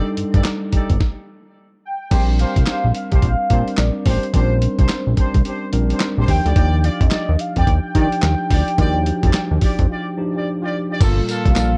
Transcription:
Already playing: G3 D4 D#4 A4
0.17 G2, closed hi-hat
0.34 G2 D#4 G4 A4 D5, kick, closed hi-hat
0.44 snare, clap, closed hi-hat
0.72 G1 D#4 G4 A4 D5, kick, closed hi-hat
0.90 G1, kick, closed hi-hat
1.00 kick, snare
1.85 G5
2.11 A#1 G3 C4 D4 G4 A#4 C5, kick, closed hi-hat, crash
2.39 D4 G4 C5 F5, closed hi-hat
2.56 C2, kick, closed hi-hat
2.66 D4 G4 C5, snare, clap, closed hi-hat
2.84 A#1
2.95 F5, closed hi-hat
3.12 C2 D4 G4 C5, kick, closed hi-hat
3.22 A#1, kick, closed hi-hat
3.50 A#2 G3 C4 D4 G4 A#4 C5, kick, closed hi-hat
3.68 closed hi-hat
3.77 A#1 D5, snare, clap, closed hi-hat
4.06 A1 D4 G4 C5, kick, open hi-hat
4.23 closed hi-hat
4.33 A#1 G3 C4 C#4 D4 G4 A#4 C5, kick, closed hi-hat
4.41 D4
4.62 closed hi-hat
4.78 C2 D4 G4 C5, kick, closed hi-hat
4.89 snare, clap, closed hi-hat
5.07 A#1
5.17 D4 G4 C5, kick, closed hi-hat
5.34 C2, kick, closed hi-hat
5.45 D4 G4 C5, closed hi-hat
5.72 A#1 G3 C4 D4 A#4, closed hi-hat
5.90 D4 G4 C5, closed hi-hat
6.00 snare, clap, closed hi-hat
6.17 A#1 D4 G4 C5
6.28 D#2 F3 D4 D#4 G4 G5, kick, open hi-hat
6.45 D2 F4 G4 D5, closed hi-hat
6.56 D#2 F4 G4 D5, kick, closed hi-hat
6.84 F4 G4 D5 F5, closed hi-hat
7.01 F2 D#5, kick, closed hi-hat
7.11 F4 G4 D5, snare, clap, closed hi-hat
7.29 D#2
7.39 F5, closed hi-hat
7.56 F2 F4 G4 D5 G5, kick, closed hi-hat
7.67 D#2, kick, closed hi-hat
7.95 D#3 F3 D4 D#4 F4 G4 D5, kick, closed hi-hat
8.12 closed hi-hat
8.22 D#2, snare, clap, closed hi-hat
8.50 D2 F4 G4 D5, kick, open hi-hat
8.68 closed hi-hat
8.78 D#2 F3 D4 D#4 F4 F#4 G4 D5, kick, closed hi-hat
8.86 G4
9.06 closed hi-hat
9.23 F2 F4 G4 D5, kick, closed hi-hat
9.33 snare, clap, closed hi-hat
9.51 D#2
9.61 F4 G4 D5, kick, open hi-hat
9.79 F2, kick, closed hi-hat
9.89 F4 G4 D5
10.17 F3 D4 D#4 G4
10.34 F4 G4 D5
10.62 F4 G4 D5
10.90 F4 G4 D5
11.01 G1 A#2 G3 A#3 F4 A4, kick, closed hi-hat, crash, tambourine
11.28 A#3 F4 A4 F5, closed hi-hat, tambourine
11.45 C2, kick, closed hi-hat
11.56 A#1 A#3 F4 A4, snare, clap, closed hi-hat, tambourine

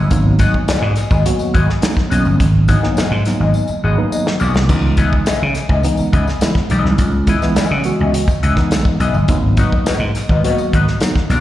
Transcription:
0.11 G#1 F#3 A#3 B3 D#4, kick, closed hi-hat, tambourine
0.39 B3 F#4 G#4 D#5, kick, closed hi-hat, tambourine
0.54 kick
0.68 B3 F#4 G#4 D#5, muted slap bass stroke, snare, closed hi-hat, tambourine
0.82 G#2
0.96 muted clean electric guitar stroke, snare, closed hi-hat, tambourine
1.10 G#1 B3 F#4 G#4 D#5, kick, tambourine
1.26 F#3 A#3 B3 F#4, closed hi-hat, tambourine
1.39 muted clean electric guitar stroke, muted slap bass stroke, tambourine
1.54 G#1 B3 F#4 G#4 D#5, kick, closed hi-hat
1.69 muted clean electric guitar stroke, snare
1.82 F#3 A#3 B3 D#4, muted clean electric guitar stroke, snare, closed hi-hat, tambourine
1.97 kick, snare
2.10 B1 F#3 A#3 B3 C#4 F#4 G#4 D#5, closed hi-hat, tambourine
2.25 G1, muted clean electric guitar stroke, tambourine
2.40 G#1, kick, closed hi-hat, tambourine
2.68 F#3 A#3 B3 D#4 F#4 G#4 D#5, kick, closed hi-hat, tambourine
2.83 F#3 A#3 B3 D#4, snare
2.97 B3 F#4 G#4 D#5, muted slap bass stroke, snare, closed hi-hat, tambourine
3.11 G#2
3.25 F#3 A#3 B3 D#4, muted clean electric guitar stroke, snare, closed hi-hat, tambourine
3.40 G#1 B3 F#4 G#4 D#5
3.54 tambourine
3.68 muted clean electric guitar stroke, muted slap bass stroke, tambourine
3.84 G#1 B3 F#4 G#4 D#5
3.97 F#3 A#3 B3 D#4 B4, muted clean electric guitar stroke
4.12 D#5, muted clean electric guitar stroke, tambourine
4.26 muted clean electric guitar stroke, snare
4.40 B1 B3 F#4 G#4 D#5, tambourine
4.54 C2, muted clean electric guitar stroke, snare, tambourine
4.69 C#2 E3 G#3 B3 D#4, kick, crash, tambourine
4.97 B3 E4 G#4 D#5, kick, closed hi-hat, tambourine
5.13 kick
5.26 B3 E4 G#4 D#5, muted slap bass stroke, snare, closed hi-hat, tambourine
5.42 C#3
5.55 muted clean electric guitar stroke, snare, closed hi-hat, tambourine
5.69 C#2 B3 E4 G#4 D#5, kick
5.83 E3 G#3 B3 D#4, closed hi-hat, tambourine
5.97 muted clean electric guitar stroke, muted slap bass stroke, tambourine
6.13 C#2 B3 E4 G#4 D#5, kick, closed hi-hat
6.27 muted clean electric guitar stroke, snare, tambourine
6.41 E3 G#3 B3 E4, muted clean electric guitar stroke, snare, closed hi-hat, tambourine
6.55 muted clean electric guitar stroke, kick, snare
6.70 B1 E3 G#3 B3 D#4 E4 G#4 D#5, closed hi-hat, tambourine
6.85 C2, muted clean electric guitar stroke, snare
6.98 C#2, kick, closed hi-hat, tambourine
7.27 E3 G#3 B3 E4 G#4 D#5, kick, closed hi-hat, tambourine
7.42 E3 G#3 B3 E4, snare, tambourine
7.56 B3 E4 G#4 D#5, muted slap bass stroke, snare, closed hi-hat, tambourine
7.71 C#3
7.84 E3 G#3 B3 F#4, muted clean electric guitar stroke, closed hi-hat, tambourine
8.00 C#2 B3 E4 G#4 D#5
8.14 closed hi-hat, tambourine
8.28 muted slap bass stroke, muted clean electric guitar stroke, kick, tambourine
8.43 C#2 B3 E4 G#4 D#5, closed hi-hat
8.57 E3 G#3 B3 D#4, muted clean electric guitar stroke, kick, snare, tambourine
8.71 muted clean electric guitar stroke, snare, closed hi-hat, tambourine
8.85 muted clean electric guitar stroke, kick
9.00 B1 B3 E4 G#4 D#5, closed hi-hat, tambourine
9.14 G1, muted clean electric guitar stroke, tambourine
9.28 G#1 F#3 A#3 B3 D#4, kick, closed hi-hat, tambourine
9.57 D#4 F#4 B4 D#5, kick, closed hi-hat, tambourine
9.72 kick
9.85 D#4 F#4 B4 D#5, muted slap bass stroke, snare, closed hi-hat, tambourine
9.99 G#2
10.15 muted clean electric guitar stroke, snare, closed hi-hat, tambourine
10.29 G#1 D#4 F#4 B4 D#5, kick
10.44 F#3 A#3 B3 D#4 F#4 B4 D#5, closed hi-hat, tambourine
10.57 muted slap bass stroke, muted clean electric guitar stroke, tambourine
10.73 G#1 D#4 F#4 B4 D#5, kick, closed hi-hat
10.88 muted clean electric guitar stroke, snare, tambourine
11.00 F#3 A#3 B3 D#4, muted clean electric guitar stroke, snare, closed hi-hat, tambourine
11.16 muted clean electric guitar stroke, kick, snare
11.30 B1 F#3 A#3 B3 D#4 F#4 B4 D#5, closed hi-hat, tambourine

